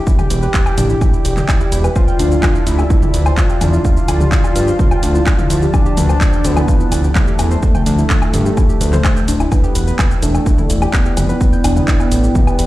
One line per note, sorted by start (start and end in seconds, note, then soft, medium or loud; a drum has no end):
0.00 1.92 E4 medium
0.00 1.87 G4 loud
0.00 9.48 D5 medium
0.00 1.92 G5 medium
0.07 0.18 E4 medium
0.07 0.18 E5 medium
0.07 kick loud
0.07 shaker soft
0.19 0.26 G4 loud
0.19 0.26 G5 medium
0.19 mid tom medium
0.19 low woodblock medium
0.19 shaker soft
0.30 0.47 E1 medium
0.30 0.38 B4 medium
0.30 0.38 B5 medium
0.30 open hi-hat loud
0.30 shaker medium
0.42 0.50 B4 loud
0.42 0.50 B5 medium
0.42 shaker soft
0.54 0.62 B4 loud
0.54 0.62 B5 medium
0.54 kick loud
0.54 clap loud
0.54 shaker soft
0.66 0.73 G5 loud
0.66 0.73 G6 medium
0.66 low woodblock medium
0.66 shaker soft
0.78 0.95 A1 medium
0.78 0.85 D4 loud
0.78 0.85 D5 medium
0.78 open hi-hat loud
0.78 mid tom medium
0.78 shaker medium
0.90 0.94 E4 medium
0.90 0.94 E5 medium
0.90 shaker soft
1.01 1.09 E4 medium
1.01 1.09 E5 medium
1.01 kick loud
1.01 low woodblock medium
1.01 shaker soft
1.13 1.18 E4 medium
1.13 1.18 E5 medium
1.13 shaker soft
1.25 1.42 E1 medium
1.25 1.33 G4 medium
1.25 1.33 G5 medium
1.25 open hi-hat loud
1.25 shaker medium
1.37 1.44 G5 medium
1.37 1.44 G6 medium
1.37 clap soft
1.37 mid tom medium
1.37 shaker soft
1.49 1.56 E4 loud
1.49 1.56 E5 medium
1.49 kick loud
1.49 clap loud
1.49 low woodblock medium
1.49 shaker soft
1.61 1.71 E4 loud
1.61 1.71 E5 medium
1.61 shaker soft
1.72 1.89 E1 medium
1.72 1.77 E4 loud
1.72 1.77 E5 medium
1.72 open hi-hat loud
1.72 shaker medium
1.84 1.91 B4 loud
1.84 1.91 B5 medium
1.84 low woodblock medium
1.84 shaker soft
1.96 9.48 F3 medium
1.96 2.68 F4 loud
1.96 2.03 C5 loud
1.96 9.48 A5 medium
1.96 2.03 C6 medium
1.96 kick loud
1.96 low woodblock medium
1.96 shaker soft
2.08 2.15 G5 loud
2.08 2.15 G6 medium
2.08 shaker soft
2.19 2.36 D2 loud
2.19 2.27 D4 loud
2.19 2.27 D5 medium
2.19 open hi-hat loud
2.19 shaker medium
2.31 2.36 E4 medium
2.31 2.36 E5 medium
2.31 shaker soft
2.43 2.51 F4 medium
2.43 kick loud
2.43 clap loud
2.43 mid tom medium
2.43 low woodblock medium
2.43 shaker soft
2.55 2.59 E4 medium
2.55 2.59 E5 medium
2.55 shaker soft
2.67 2.84 D2 loud
2.67 3.28 E4 loud
2.67 2.78 E4 medium
2.67 2.78 E5 medium
2.67 open hi-hat loud
2.67 shaker medium
2.79 2.86 G4 medium
2.79 2.86 G5 medium
2.79 low woodblock medium
2.79 shaker soft
2.90 3.02 E4 medium
2.90 3.02 E5 medium
2.90 kick loud
2.90 shaker soft
3.02 3.10 G4 loud
3.02 3.10 G5 medium
3.02 mid tom medium
3.02 shaker soft
3.14 3.31 D2 medium
3.14 3.21 B4 medium
3.14 3.21 B5 medium
3.14 open hi-hat loud
3.14 shaker medium
3.26 3.33 C5 loud
3.26 3.33 C6 medium
3.26 low woodblock medium
3.26 shaker soft
3.38 5.64 F4 loud
3.38 3.45 C5 loud
3.38 3.45 C6 medium
3.38 kick loud
3.38 clap loud
3.38 shaker soft
3.50 3.57 G5 loud
3.50 3.57 G6 medium
3.50 shaker soft
3.61 3.78 E2 medium
3.61 3.69 D4 loud
3.61 3.69 D5 medium
3.61 open hi-hat loud
3.61 mid tom medium
3.61 low woodblock medium
3.61 shaker medium
3.73 3.78 E4 medium
3.73 3.78 E5 medium
3.73 shaker soft
3.85 3.92 F4 medium
3.85 3.92 F5 medium
3.85 kick loud
3.85 shaker soft
3.97 4.01 E4 medium
3.97 4.01 E5 medium
3.97 shaker soft
4.08 4.25 D2 loud
4.08 4.20 E4 medium
4.08 4.20 E5 medium
4.08 open hi-hat loud
4.08 low woodblock medium
4.08 shaker medium
4.20 4.28 G4 medium
4.20 4.28 G5 medium
4.20 mid tom medium
4.20 shaker soft
4.32 4.43 E4 medium
4.32 4.43 E5 medium
4.32 kick loud
4.32 clap loud
4.32 shaker soft
4.44 4.51 G4 loud
4.44 4.51 G5 medium
4.44 low woodblock medium
4.44 shaker soft
4.55 4.72 G2 medium
4.55 4.63 B4 medium
4.55 4.63 B5 medium
4.55 open hi-hat loud
4.55 shaker medium
4.68 4.75 C5 loud
4.68 4.75 C6 medium
4.68 shaker soft
4.79 4.87 C5 loud
4.79 4.87 C6 medium
4.79 kick loud
4.79 mid tom loud
4.79 shaker soft
4.91 4.99 G5 loud
4.91 4.99 G6 medium
4.91 low woodblock medium
4.91 shaker soft
5.03 5.20 D2 medium
5.03 5.11 D4 loud
5.03 5.11 D5 medium
5.03 open hi-hat loud
5.03 shaker medium
5.15 5.19 E4 medium
5.15 5.19 E5 medium
5.15 shaker soft
5.26 5.34 F4 medium
5.26 5.34 F5 medium
5.26 kick loud
5.26 clap loud
5.26 low woodblock medium
5.26 shaker soft
5.39 5.43 E4 medium
5.39 5.43 E5 medium
5.39 mid tom loud
5.39 shaker soft
5.50 5.67 D2 loud
5.50 5.62 E4 medium
5.50 5.62 E5 medium
5.50 open hi-hat loud
5.50 shaker medium
5.62 5.70 G4 medium
5.62 5.70 G5 medium
5.62 shaker soft
5.74 6.46 D4 loud
5.74 5.85 E4 medium
5.74 5.85 E5 medium
5.74 kick loud
5.74 low woodblock medium
5.74 shaker soft
5.86 5.93 G4 loud
5.86 5.93 G5 medium
5.86 shaker soft
5.97 6.14 D2 loud
5.97 6.05 B4 medium
5.97 6.05 B5 medium
5.97 open hi-hat loud
5.97 mid tom loud
5.97 shaker medium
6.09 6.17 C5 loud
6.09 6.17 C6 medium
6.09 low woodblock medium
6.09 shaker soft
6.21 6.29 C5 loud
6.21 6.29 C6 medium
6.21 kick loud
6.21 clap loud
6.21 shaker soft
6.33 6.40 G5 loud
6.33 6.40 G6 medium
6.33 shaker soft
6.45 6.61 D2 loud
6.45 7.06 B3 loud
6.45 6.52 D4 loud
6.45 6.52 D5 medium
6.45 open hi-hat medium
6.45 shaker medium
6.57 6.61 E4 medium
6.57 6.61 E5 medium
6.57 mid tom loud
6.57 low woodblock medium
6.57 shaker soft
6.68 6.76 F4 medium
6.68 6.76 F5 medium
6.68 kick loud
6.68 shaker soft
6.80 6.85 E4 medium
6.80 6.85 E5 medium
6.80 shaker soft
6.92 7.09 D2 medium
6.92 7.03 E4 medium
6.92 7.03 E5 medium
6.92 open hi-hat loud
6.92 low woodblock medium
6.92 shaker medium
7.04 7.11 G4 medium
7.04 7.11 G5 medium
7.04 shaker soft
7.15 9.42 A3 loud
7.15 7.27 E4 medium
7.15 7.27 E5 medium
7.15 kick loud
7.15 clap loud
7.15 mid tom loud
7.15 shaker soft
7.27 7.35 G4 loud
7.27 7.35 G5 medium
7.27 shaker soft
7.39 7.56 E2 medium
7.39 7.47 B4 medium
7.39 7.47 B5 medium
7.39 open hi-hat medium
7.39 low woodblock medium
7.39 shaker medium
7.51 7.58 C5 loud
7.51 7.58 C6 medium
7.51 shaker soft
7.63 7.70 C5 loud
7.63 7.70 C6 medium
7.63 kick loud
7.63 shaker soft
7.75 7.82 G5 loud
7.75 7.82 G6 medium
7.75 mid tom medium
7.75 low woodblock medium
7.75 shaker soft
7.86 8.03 D2 medium
7.86 7.94 D4 loud
7.86 7.94 D5 medium
7.86 open hi-hat loud
7.86 shaker medium
7.98 8.03 E4 medium
7.98 8.03 E5 medium
7.98 shaker soft
8.10 kick loud
8.10 clap loud
8.10 shaker soft
8.22 8.26 E4 medium
8.22 8.26 E5 medium
8.22 low woodblock medium
8.22 shaker soft
8.34 8.50 G2 medium
8.34 8.45 E4 medium
8.34 8.45 E5 medium
8.34 open hi-hat loud
8.34 mid tom medium
8.34 shaker medium
8.46 8.53 G4 medium
8.46 8.53 G5 medium
8.46 shaker soft
8.57 8.69 E4 medium
8.57 8.69 E5 medium
8.57 kick loud
8.57 low woodblock medium
8.57 shaker soft
8.69 8.77 G4 loud
8.69 8.77 G5 medium
8.69 shaker soft
8.81 8.98 D2 medium
8.81 8.88 B4 medium
8.81 8.88 B5 medium
8.81 open hi-hat loud
8.81 shaker medium
8.93 9.00 C5 loud
8.93 9.00 C6 medium
8.93 clap soft
8.93 mid tom medium
8.93 shaker soft
9.04 9.12 C5 loud
9.04 9.12 C6 medium
9.04 kick loud
9.04 clap loud
9.04 low woodblock medium
9.04 shaker soft
9.16 9.24 G5 loud
9.16 9.24 G6 medium
9.16 shaker soft
9.28 9.45 D1 medium
9.28 9.36 D4 loud
9.28 9.36 D5 medium
9.28 open hi-hat loud
9.28 shaker medium
9.40 9.45 E4 medium
9.40 9.45 E5 medium
9.40 low woodblock medium
9.40 shaker soft
9.52 10.13 B3 loud
9.52 9.63 E4 medium
9.52 12.66 E4 medium
9.52 12.66 D5 medium
9.52 9.63 E5 medium
9.52 12.66 G5 medium
9.52 kick loud
9.52 low woodblock medium
9.52 shaker soft
9.64 9.71 G4 loud
9.64 9.71 G5 medium
9.64 shaker soft
9.75 9.92 E1 loud
9.75 9.83 B4 medium
9.75 9.83 B5 medium
9.75 open hi-hat loud
9.75 shaker medium
9.87 9.95 B4 loud
9.87 9.95 B5 medium
9.87 shaker soft
9.99 10.07 B4 loud
9.99 10.07 B5 medium
9.99 kick loud
9.99 clap loud
9.99 mid tom medium
9.99 low woodblock medium
9.99 shaker soft
10.11 10.18 G5 loud
10.11 10.18 G6 medium
10.11 shaker soft
10.23 10.39 E1 loud
10.23 10.84 A3 loud
10.23 10.30 D4 loud
10.23 10.30 D5 medium
10.23 open hi-hat loud
10.23 shaker medium
10.35 10.39 E4 medium
10.35 10.39 E5 medium
10.35 low woodblock medium
10.35 shaker soft
10.46 10.54 E4 medium
10.46 10.54 E5 medium
10.46 kick loud
10.46 shaker soft
10.58 10.63 E4 medium
10.58 10.63 E5 medium
10.58 mid tom medium
10.58 shaker soft
10.70 10.87 E1 medium
10.70 10.81 E4 medium
10.70 10.81 E5 medium
10.70 open hi-hat loud
10.70 shaker medium
10.82 10.89 G4 medium
10.82 10.89 G5 medium
10.82 low woodblock medium
10.82 shaker soft
10.93 12.66 B3 loud
10.93 11.05 E4 medium
10.93 11.05 E5 medium
10.93 kick loud
10.93 clap loud
10.93 shaker soft
11.05 11.13 G4 loud
11.05 11.13 G5 medium
11.05 shaker soft
11.17 11.34 F1 medium
11.17 11.25 B4 medium
11.17 11.25 B5 medium
11.17 open hi-hat loud
11.17 mid tom medium
11.17 low woodblock soft
11.17 shaker medium
11.29 11.36 B4 loud
11.29 11.36 B5 medium
11.29 shaker soft
11.41 11.48 B4 loud
11.41 11.48 B5 medium
11.41 kick loud
11.41 shaker soft
11.53 11.60 G5 loud
11.53 11.60 G6 medium
11.53 shaker soft
11.64 11.81 E1 medium
11.64 11.72 D4 loud
11.64 11.72 D5 medium
11.64 open hi-hat loud
11.64 low woodblock medium
11.64 shaker medium
11.76 11.81 E4 medium
11.76 11.81 E5 medium
11.76 mid tom medium
11.76 shaker soft
11.88 11.96 E4 medium
11.88 11.96 E5 medium
11.88 kick loud
11.88 clap loud
11.88 shaker soft
12.00 12.04 E4 medium
12.00 12.04 E5 medium
12.00 low woodblock soft
12.00 shaker soft
12.12 12.28 A1 medium
12.12 12.23 E4 medium
12.12 12.23 E5 medium
12.12 open hi-hat loud
12.12 shaker medium
12.24 12.31 G4 medium
12.24 12.31 G5 medium
12.24 shaker soft
12.35 12.47 E4 medium
12.35 12.47 E5 medium
12.35 kick loud
12.35 mid tom medium
12.35 shaker soft
12.47 12.55 G4 loud
12.47 12.55 G5 medium
12.47 low woodblock medium
12.47 shaker soft
12.59 12.66 E1 medium
12.59 12.66 B4 medium
12.59 12.66 B5 medium
12.59 open hi-hat loud
12.59 shaker medium